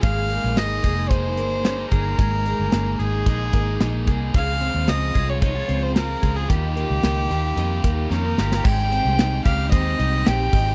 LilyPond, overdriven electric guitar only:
\new Staff \with { instrumentName = "Overdriven electric guitar" } { \time 4/4 \key aes \major \tempo 4 = 111 <aes bes ees' aes'>8 <bes ees' aes'>8 <aes bes ees' aes'>8 <bes ees' aes'>8 <aes bes ees' aes'>4 <aes bes ees' aes'>8 <bes ees' aes'>8 | <aes bes ees' aes'>8 <bes ees' aes'>8 <aes bes ees' aes'>8 <bes ees' aes'>8 <aes bes ees' aes'>4 <aes bes ees' aes'>8 <bes ees' aes'>8 | <des f aes c' f'>8 <aes c' f'>8 <des f aes c' f'>8 <aes c' f'>8 <f aes f'>4 <des f aes c' f'>8 <aes c' f'>8 | <ees g bes ees' f'>8 <bes ees' f'>8 <ees g bes ees' f'>8 <bes ees' f'>8 <g bes ees' f'>4 <ees g bes ees' f'>8 <bes ees' f'>8 |
<aes c' ees' g'>4 <aes c' ees' g'>8 <c' ees' g'>8 <aes c' ees' g'>4 <aes c' ees' g'>4 | }